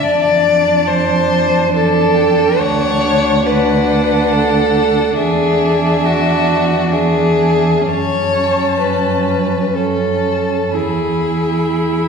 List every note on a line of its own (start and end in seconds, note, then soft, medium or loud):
0.03 2.60 F2 medium
0.03 1.69 D4 medium
0.03 0.89 D5 medium
0.03 1.69 A5 medium
0.87 1.72 C5 medium
1.73 2.56 D4 medium
1.73 2.60 A4 medium
1.73 2.16 A5 medium
2.15 2.59 G5 medium
2.57 5.18 D2 medium
2.57 3.44 D4 medium
2.57 3.47 C#5 loud
2.57 3.45 F#5 medium
3.46 5.14 D4 medium
3.46 4.34 B4 medium
3.46 5.14 F#5 medium
4.32 5.16 A4 medium
5.16 7.85 E2 medium
5.16 6.89 D4 medium
5.16 6.07 G#4 medium
5.16 6.88 E5 medium
6.05 6.93 F#4 medium
6.92 7.87 D4 medium
6.92 7.89 G#4 medium
6.92 7.87 E5 medium
7.88 10.71 F#2 medium
7.88 9.71 C#4 medium
7.88 8.79 C#5 medium
7.88 9.72 A5 medium
8.80 9.76 B4 medium
9.74 10.75 C#4 soft
9.74 10.75 A4 medium
9.74 10.73 A5 medium
10.73 12.08 E2 soft
10.73 12.08 E4 soft
10.73 12.08 G#4 medium
10.73 12.08 B5 medium